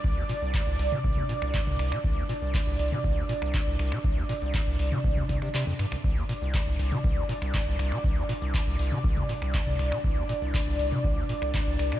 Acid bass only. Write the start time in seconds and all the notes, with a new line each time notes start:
0.04 C2
0.17 D#2
0.29 A#2
0.42 C2
0.54 D2
0.67 C2
0.79 C2
0.92 C3
1.04 C2
1.17 D#2
1.29 A#2
1.42 C2
1.54 D2
1.67 C2
1.79 C2
1.92 C3
2.04 C2
2.17 D#2
2.29 A#2
2.42 C2
2.54 D2
2.67 C2
2.79 C2
2.92 C3
3.04 C2
3.17 D#2
3.29 A#2
3.42 C2
3.54 D2
3.67 C2
3.79 C2
3.92 C3
4.04 C2
4.17 D#2
4.29 A#2
4.42 C2
4.54 D2
4.67 C2
4.79 C2
4.92 C3
5.04 C2
5.17 D#2
5.29 C2
5.42 C3
5.54 C3
5.67 F2
5.79 G2
5.92 C2
6.04 C2
6.17 D#2
6.29 A#2
6.42 C2
6.54 D2
6.67 C2
6.79 C2
6.92 C3
7.04 C2
7.17 D#2
7.29 A#2
7.42 C2
7.54 D2
7.67 C2
7.79 C2
7.92 C3
8.04 C2
8.17 D#2
8.29 A#2
8.42 C2
8.54 D2
8.67 C2
8.79 C2
8.92 C3
9.04 C2
9.17 D#2
9.29 A#2
9.42 C2
9.54 D2
9.67 C2
9.79 C2
9.92 C3
10.04 C2
10.17 D#2
10.29 A#2
10.42 C2
10.54 D2
10.67 C2
10.79 C2
10.92 C3
11.04 C2
11.17 D#2
11.29 A#2
11.42 C2
11.54 D2
11.67 C2
11.79 C2
11.92 C3